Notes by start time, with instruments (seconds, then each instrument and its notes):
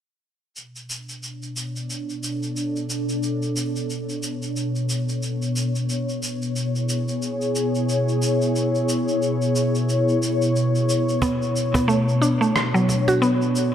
0.56 ambient pad B2, cabasa
0.76 cabasa
0.86 ambient pad B3 D4, cabasa
1.09 cabasa
1.18 ambient pad C#5
1.23 cabasa
1.42 cabasa
1.56 cabasa
1.76 ambient pad A4, cabasa
1.90 cabasa
2.09 cabasa
2.23 cabasa
2.43 cabasa
2.56 cabasa
2.76 cabasa
2.90 cabasa
3.09 cabasa
3.23 cabasa
3.42 cabasa
3.56 cabasa
3.76 cabasa
3.90 cabasa
4.09 cabasa
4.23 cabasa
4.42 cabasa
4.56 cabasa
4.75 cabasa
4.89 cabasa
5.09 cabasa
5.22 cabasa
5.42 cabasa
5.56 cabasa
5.75 cabasa
5.89 cabasa
6.09 cabasa
6.23 cabasa
6.38 ambient pad E4, cabasa
6.53 ambient pad G#4, cabasa
6.75 cabasa
6.89 cabasa
7.08 cabasa
7.22 cabasa
7.41 cabasa
7.55 cabasa
7.75 cabasa
7.89 cabasa
8.08 cabasa
8.22 cabasa
8.41 cabasa
8.56 cabasa
8.75 cabasa
8.89 cabasa
9.08 cabasa
9.22 cabasa
9.42 cabasa
9.56 cabasa
9.75 cabasa
9.89 cabasa
10.08 cabasa
10.23 cabasa
10.42 cabasa
10.56 cabasa
10.75 cabasa
10.89 cabasa
11.09 cabasa
11.22 synth pluck B3, cajon bass, cabasa
11.42 cabasa
11.56 cabasa
11.71 synth pluck B3, ambient pad D4, cajon bass
11.75 cabasa
11.88 synth pluck A3, cabasa
12.08 cabasa
12.22 synth pluck D4, cabasa
12.41 synth pluck A3, cabasa
12.56 cross-stick, cabasa
12.74 synth pluck F#3, ambient pad A4, cabasa
12.89 cajon slap, cabasa
13.08 synth pluck F#4, cajon slap, cabasa
13.22 synth pluck B3, cabasa
13.42 cabasa
13.56 cabasa